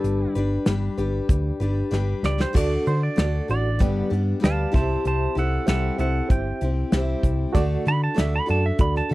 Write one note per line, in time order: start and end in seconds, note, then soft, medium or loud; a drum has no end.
0.00 0.25 G1 medium
0.00 0.37 G2 medium
0.00 0.36 D3 medium
0.00 0.36 G3 medium
0.00 0.37 D4 medium
0.00 0.35 G4 medium
0.00 0.33 A4 medium
0.00 0.34 B4 medium
0.04 closed hi-hat medium
0.35 0.57 G1 medium
0.35 0.66 G3 medium
0.35 0.67 D4 medium
0.35 0.67 G4 medium
0.35 0.67 B4 medium
0.35 closed hi-hat medium
0.66 0.88 G1 medium
0.66 0.98 G3 medium
0.66 0.98 D4 medium
0.66 0.97 G4 medium
0.66 0.96 B4 medium
0.66 snare loud
0.66 closed hi-hat medium
0.98 1.19 G1 loud
0.98 1.62 G3 soft
0.98 1.61 D4 medium
0.98 1.60 G4 medium
0.98 1.59 B4 medium
0.98 closed hi-hat medium
1.29 1.50 D2 medium
1.29 kick loud
1.29 closed hi-hat loud
1.60 1.81 G1 medium
1.60 1.90 G3 medium
1.60 1.90 D4 soft
1.60 1.91 G4 medium
1.60 1.92 B4 medium
1.60 closed hi-hat medium
1.91 2.13 G1 medium
1.91 2.54 G3 medium
1.91 2.53 D4 medium
1.91 2.54 G4 medium
1.91 2.55 B4 medium
1.91 snare medium
2.23 2.44 C#2 medium
2.23 2.40 D5 medium
2.23 snare medium
2.40 2.56 C5 medium
2.40 snare medium
2.53 2.76 D2 medium
2.53 2.86 D3 medium
2.53 2.86 A3 medium
2.53 2.86 D4 medium
2.53 2.86 F#4 medium
2.53 2.95 F#4 loud
2.53 2.85 A4 medium
2.53 2.95 A4 medium
2.53 kick loud
2.53 closed hi-hat medium
2.53 crash medium
2.57 2.96 D5 loud
2.57 2.87 D5 medium
2.86 3.08 D3 medium
2.86 3.16 D4 soft
2.86 3.17 F#4 soft
2.86 3.18 A4 medium
2.86 3.02 C5 medium
2.86 closed hi-hat medium
3.03 3.48 D5 medium
3.16 3.39 D2 medium
3.16 3.48 A3 medium
3.16 3.49 D4 medium
3.16 3.37 F#4 medium
3.16 3.49 F#4 medium
3.16 3.38 A4 medium
3.16 3.47 A4 medium
3.16 3.38 D5 medium
3.16 snare loud
3.16 closed hi-hat medium
3.48 3.82 A1 medium
3.48 3.79 D4 soft
3.48 3.69 F#4 medium
3.48 3.80 F#4 soft
3.48 3.80 A4 soft
3.48 3.69 A4 medium
3.48 3.80 D5 loud
3.48 3.70 D5 medium
3.48 closed hi-hat medium
3.79 4.01 G1 medium
3.79 4.11 G2 medium
3.79 4.11 D3 medium
3.79 4.11 G3 medium
3.79 4.10 B3 medium
3.79 4.09 D4 medium
3.79 4.09 G4 medium
3.79 4.20 G4 medium
3.79 4.20 B4 medium
3.79 4.21 D5 medium
3.79 kick loud
3.79 closed hi-hat medium
4.10 4.32 G2 medium
4.10 4.39 G3 medium
4.10 4.40 B3 soft
4.10 4.40 D4 medium
4.10 4.41 G4 medium
4.10 closed hi-hat medium
4.40 4.64 D2 medium
4.40 4.72 G3 medium
4.40 4.72 B3 medium
4.40 4.72 D4 medium
4.40 4.70 G4 medium
4.40 4.72 G4 medium
4.40 closed hi-hat medium
4.44 4.75 B4 medium
4.44 4.75 D5 medium
4.44 4.75 F5 medium
4.44 4.74 A5 loud
4.44 snare loud
4.72 4.95 C2 medium
4.72 5.37 C3 medium
4.72 5.37 G3 medium
4.72 5.36 C4 medium
4.72 5.36 E4 medium
4.72 5.34 G4 medium
4.72 5.49 G4 medium
4.72 5.49 C5 medium
4.72 5.04 C5 medium
4.72 5.49 E5 medium
4.72 5.05 A5 medium
4.72 kick loud
4.72 closed hi-hat medium
4.76 snare soft
5.05 5.26 C2 medium
5.05 5.36 C5 medium
5.05 5.37 A5 medium
5.05 closed hi-hat medium
5.35 5.57 C2 medium
5.35 5.66 C4 soft
5.35 5.68 E4 soft
5.35 5.67 G4 medium
5.35 5.67 A4 medium
5.35 5.68 F#5 medium
5.35 closed hi-hat medium
5.65 5.89 C2 loud
5.65 5.99 G3 medium
5.65 5.99 C4 medium
5.65 5.98 E4 medium
5.65 5.86 G4 medium
5.65 5.98 A4 medium
5.65 5.87 C5 medium
5.65 5.87 E5 medium
5.65 5.99 F#5 medium
5.65 snare loud
5.65 closed hi-hat medium
5.70 5.97 G4 medium
5.96 6.20 C2 medium
5.96 6.61 E4 soft
5.96 6.17 G4 medium
5.96 6.60 G4 medium
5.96 6.29 A4 medium
5.96 6.18 C5 medium
5.96 6.18 E5 medium
5.96 closed hi-hat medium
6.01 6.63 C4 soft
6.01 6.30 F#5 loud
6.28 6.51 G1 medium
6.28 6.68 G4 medium
6.28 6.69 C5 medium
6.28 6.69 E5 medium
6.28 7.52 G5 medium
6.28 kick loud
6.28 closed hi-hat medium
6.61 6.82 C2 medium
6.61 6.94 C4 soft
6.61 6.93 E4 soft
6.61 6.93 G4 medium
6.61 closed hi-hat medium
6.91 7.13 C2 loud
6.91 7.55 G3 medium
6.91 7.31 G4 medium
6.91 7.32 C5 medium
6.91 7.32 E5 medium
6.91 snare loud
6.91 closed hi-hat medium
6.95 7.56 C4 medium
6.95 7.56 E4 medium
6.95 7.56 G4 medium
7.23 7.44 C2 medium
7.23 kick medium
7.23 closed hi-hat medium
7.53 7.76 D2 medium
7.53 7.86 D3 loud
7.53 7.86 A3 medium
7.53 7.87 D4 medium
7.53 7.93 F#4 loud
7.53 7.86 F#4 loud
7.53 7.93 A4 loud
7.53 7.94 D5 loud
7.53 kick loud
7.53 closed hi-hat loud
7.57 7.84 A4 loud
7.86 8.07 D3 medium
7.86 8.15 D4 soft
7.86 8.16 F#4 medium
7.86 8.16 A4 medium
7.86 8.03 B5 loud
7.86 closed hi-hat medium
8.04 8.18 A5 loud
8.14 8.39 D2 medium
8.14 8.47 A3 medium
8.14 8.48 D4 medium
8.14 8.36 F#4 medium
8.14 8.46 F#4 medium
8.14 8.36 A4 medium
8.14 8.45 A4 medium
8.14 8.37 D5 medium
8.14 snare loud
8.14 closed hi-hat medium
8.20 8.34 E5 medium
8.36 8.50 B5 medium
8.46 8.70 F#2 medium
8.46 9.11 D4 soft
8.46 9.09 F#4 soft
8.46 8.68 F#4 medium
8.46 9.08 A4 medium
8.46 8.68 A4 medium
8.46 8.68 D5 medium
8.46 closed hi-hat medium
8.50 8.65 A5 medium
8.66 8.80 E5 medium
8.79 9.00 D2 medium
8.79 9.14 F#4 medium
8.79 9.14 A4 medium
8.79 9.14 D5 medium
8.79 8.96 B5 loud
8.79 kick loud
8.79 closed hi-hat medium
8.96 9.12 A5 medium
8.96 snare soft
9.09 9.14 D3 medium
9.09 9.14 F#4 medium
9.09 9.14 A4 medium
9.09 closed hi-hat medium